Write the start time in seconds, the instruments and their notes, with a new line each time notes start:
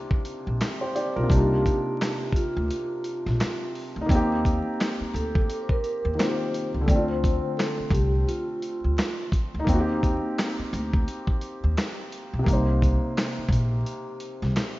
Already playing: felt piano C3 A#3 D4 D#4 F4
0.11 kick
0.25 closed hi-hat
0.47 upright bass A#1
0.61 snare, clap, closed hi-hat
0.81 felt piano G4 C5
0.95 felt piano G4 D5, closed hi-hat
1.16 upright bass B1, felt piano F4 A#4
1.23 felt piano C3 A#3
1.30 upright bass C2, felt piano D4, vibraphone G4, kick, closed hi-hat
1.34 felt piano D#4 F4
1.66 kick, closed hi-hat
2.01 snare, clap, closed hi-hat
2.32 vibraphone F4, kick, closed hi-hat
2.57 upright bass D2
2.71 closed hi-hat
3.04 closed hi-hat
3.26 upright bass A#1, snare
3.40 snare, clap, closed hi-hat
3.75 open hi-hat
3.96 upright bass D2
4.01 felt piano D#4
4.06 upright bass D#2, felt piano A#3, kick
4.10 felt piano C4, closed hi-hat
4.15 felt piano G4
4.45 kick, closed hi-hat
4.80 snare, clap, closed hi-hat
5.00 muted upright bass stroke
5.14 upright bass D2, vibraphone A4, closed hi-hat
5.35 kick
5.50 closed hi-hat
5.62 vibraphone C5
5.69 vibraphone A#4, kick
5.84 closed hi-hat
6.05 upright bass D#2
6.15 felt piano D#3 A#3, vibraphone C5
6.19 felt piano C4 F4, snare, clap, closed hi-hat
6.28 felt piano G4
6.54 closed hi-hat
6.74 upright bass C#2
6.81 felt piano D3
6.86 upright bass D2, felt piano A3, vibraphone D5, kick, closed hi-hat
6.91 felt piano C4
6.95 felt piano F4
7.08 vibraphone C5
7.24 kick, closed hi-hat
7.57 vibraphone A4, snare, clap, closed hi-hat
7.79 muted upright bass stroke
7.90 upright bass C2, vibraphone G4, kick
7.95 closed hi-hat
8.28 vibraphone F4, closed hi-hat
8.62 closed hi-hat
8.84 upright bass D2
8.98 snare, clap, closed hi-hat
9.32 kick, closed hi-hat
9.54 upright bass D2
9.60 felt piano D#4
9.64 upright bass D#2, felt piano A#3, kick
9.69 felt piano C4, closed hi-hat
9.74 felt piano F#4
9.80 felt piano G4
10.03 kick, closed hi-hat
10.38 snare, clap, closed hi-hat
10.59 muted upright bass stroke
10.73 upright bass D2, closed hi-hat
10.93 kick
11.08 closed hi-hat
11.27 kick
11.41 closed hi-hat
11.64 upright bass D#2
11.77 snare, clap, closed hi-hat
12.12 closed hi-hat
12.33 upright bass B1
12.39 felt piano C3
12.44 upright bass C2, felt piano A#3, kick
12.48 felt piano D#4, closed hi-hat
12.53 felt piano C5
12.82 kick, closed hi-hat
13.17 snare, clap, closed hi-hat
13.38 muted upright bass stroke
13.49 upright bass A#1, kick, closed hi-hat
13.86 closed hi-hat
14.20 closed hi-hat
14.42 upright bass C2, snare
14.56 snare, clap, closed hi-hat